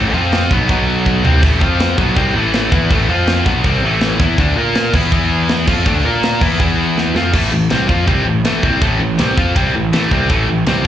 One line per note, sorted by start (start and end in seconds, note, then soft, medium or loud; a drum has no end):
0.00 0.13 A1 medium
0.00 0.14 A2 medium
0.00 0.15 E3 loud
0.00 0.16 A3 loud
0.14 0.48 F2 medium
0.14 0.50 F3 loud
0.14 0.51 C4 loud
0.14 0.51 F4 loud
0.32 snare loud
0.32 crash medium
0.51 0.68 B1 loud
0.51 0.68 B2 medium
0.51 0.69 F#3 loud
0.51 0.70 B3 loud
0.51 kick loud
0.69 1.21 B1 medium
0.69 1.23 B2 medium
0.69 1.24 F#3 medium
0.69 1.25 B3 loud
0.69 kick loud
0.69 crash medium
1.06 kick medium
1.24 1.42 C2 medium
1.24 1.42 C3 medium
1.24 1.43 G3 medium
1.24 1.43 C4 loud
1.24 floor tom medium
1.43 1.60 A1 medium
1.43 1.60 A2 loud
1.43 1.61 E3 loud
1.43 1.61 A3 loud
1.43 kick loud
1.43 splash medium
1.43 crash medium
1.61 1.96 F2 medium
1.61 1.97 F3 loud
1.61 1.98 C4 medium
1.61 1.98 F4 loud
1.61 kick loud
1.80 snare loud
1.80 crash medium
1.97 2.15 B1 loud
1.97 2.15 B2 medium
1.97 2.16 F#3 loud
1.97 2.17 B3 loud
1.97 kick loud
2.16 2.34 C2 loud
2.16 2.34 C3 medium
2.16 2.34 G3 loud
2.16 2.35 C4 loud
2.16 kick loud
2.16 crash medium
2.35 2.69 A1 medium
2.35 2.71 A2 medium
2.35 2.70 E3 medium
2.35 2.72 A3 loud
2.53 snare loud
2.53 crash medium
2.71 2.89 E2 loud
2.71 2.89 E3 loud
2.71 2.90 B3 loud
2.71 2.90 E4 loud
2.71 kick loud
2.90 3.08 A1 loud
2.90 3.08 A2 medium
2.90 3.09 E3 loud
2.90 3.09 A3 loud
2.90 kick loud
2.90 crash medium
3.08 3.43 F2 medium
3.08 3.45 F3 medium
3.08 3.46 C4 medium
3.08 3.46 F4 loud
3.27 snare loud
3.27 crash medium
3.45 3.63 B1 loud
3.45 3.64 B2 medium
3.45 3.64 F#3 loud
3.45 3.64 B3 loud
3.45 kick loud
3.64 3.81 C2 medium
3.64 3.83 C3 loud
3.64 3.83 G3 loud
3.64 3.83 C4 loud
3.64 kick loud
3.64 crash medium
3.82 4.17 A1 medium
3.82 4.20 A2 loud
3.82 4.19 E3 loud
3.82 4.21 A3 loud
4.01 snare loud
4.01 crash medium
4.20 4.37 E2 medium
4.20 4.37 E3 medium
4.20 4.38 B3 loud
4.20 4.39 E4 loud
4.20 kick loud
4.38 4.55 D2 medium
4.38 4.56 D3 medium
4.38 4.56 A3 medium
4.38 4.57 D4 loud
4.38 kick loud
4.38 crash medium
4.56 4.91 A#2 medium
4.56 4.93 A#3 loud
4.56 4.93 F4 loud
4.56 4.94 A#4 loud
4.75 snare loud
4.75 crash medium
4.94 5.11 E2 loud
4.94 5.11 E3 loud
4.94 5.12 B3 loud
4.94 5.12 E4 loud
4.94 kick loud
4.94 crash loud
5.12 5.63 E2 loud
5.12 5.67 E3 medium
5.12 5.67 B3 loud
5.12 5.68 E4 loud
5.12 kick loud
5.12 crash medium
5.49 snare loud
5.49 crash medium
5.67 5.85 F2 medium
5.67 5.85 F3 medium
5.67 5.86 C4 medium
5.67 5.86 F4 loud
5.67 kick loud
5.67 crash loud
5.85 6.03 D2 medium
5.85 6.03 D3 medium
5.85 6.04 A3 loud
5.85 6.04 D4 loud
5.85 kick loud
5.85 crash medium
6.04 6.39 A#2 medium
6.04 6.41 A#3 medium
6.04 6.41 F4 loud
6.04 6.41 A#4 medium
6.23 snare loud
6.23 crash medium
6.41 6.58 E2 loud
6.41 6.58 E3 loud
6.41 6.59 B3 medium
6.41 6.59 E4 medium
6.41 kick loud
6.41 crash loud
6.59 7.11 E2 loud
6.59 7.14 E3 loud
6.59 7.15 B3 medium
6.59 7.15 E4 loud
6.59 kick loud
6.59 crash medium
6.98 snare medium
7.15 7.32 F2 medium
7.15 7.33 F3 medium
7.15 7.33 C4 loud
7.15 7.34 F4 medium
7.15 snare medium
7.33 7.51 A1 medium
7.33 7.50 A2 loud
7.33 7.50 E3 medium
7.33 7.52 A3 medium
7.33 kick loud
7.33 crash loud
7.51 7.69 A1 medium
7.51 7.67 A2 medium
7.51 7.66 E3 medium
7.70 7.88 C2 medium
7.70 7.87 C3 medium
7.70 7.88 G3 medium
7.70 7.87 C4 loud
7.70 snare loud
7.70 ride bell medium
7.87 8.06 F2 medium
7.87 8.06 F3 medium
7.87 8.06 C4 medium
7.87 8.07 F4 loud
7.87 kick loud
8.06 8.25 C2 medium
8.06 8.25 C3 medium
8.06 8.25 G3 loud
8.06 8.25 C4 loud
8.06 kick loud
8.06 ride bell medium
8.25 8.43 A1 medium
8.25 8.40 A2 medium
8.25 8.41 E3 medium
8.44 8.62 A1 loud
8.44 8.62 A2 medium
8.44 8.63 E3 medium
8.44 8.63 A3 loud
8.44 snare loud
8.44 ride bell medium
8.63 8.80 C2 medium
8.63 8.81 C3 medium
8.63 8.82 G3 medium
8.63 8.82 C4 loud
8.63 kick loud
8.82 8.99 A1 medium
8.82 8.99 A2 loud
8.82 9.00 E3 medium
8.82 9.00 A3 loud
8.82 kick loud
8.82 ride bell medium
9.00 9.17 A1 medium
9.00 9.15 A2 medium
9.00 9.15 E3 medium
9.18 9.36 C2 medium
9.18 9.36 C3 medium
9.18 9.37 G3 medium
9.18 9.37 C4 loud
9.18 snare loud
9.18 ride bell medium
9.37 9.54 F2 loud
9.37 9.55 F3 medium
9.37 9.55 C4 medium
9.37 9.56 F4 loud
9.37 kick loud
9.55 9.73 C2 medium
9.55 9.73 C3 medium
9.55 9.74 G3 loud
9.55 9.74 C4 loud
9.55 kick loud
9.55 ride bell medium
9.75 9.91 A1 medium
9.75 9.89 A2 medium
9.75 9.89 E3 medium
9.93 10.10 A1 medium
9.93 10.10 A2 medium
9.93 10.11 E3 medium
9.93 10.11 A3 loud
9.93 snare loud
9.93 ride bell medium
10.11 10.28 C2 medium
10.11 10.28 C3 medium
10.11 10.29 G3 medium
10.11 10.30 C4 loud
10.11 kick loud
10.29 10.47 A1 loud
10.29 10.46 A2 loud
10.29 10.47 E3 loud
10.29 10.48 A3 loud
10.29 kick loud
10.29 ride bell medium
10.48 10.65 A1 medium
10.48 10.63 A2 medium
10.48 10.63 E3 medium
10.66 10.83 C2 medium
10.66 10.84 C3 medium
10.66 10.85 G3 medium
10.66 10.84 C4 medium
10.66 snare loud
10.66 ride bell medium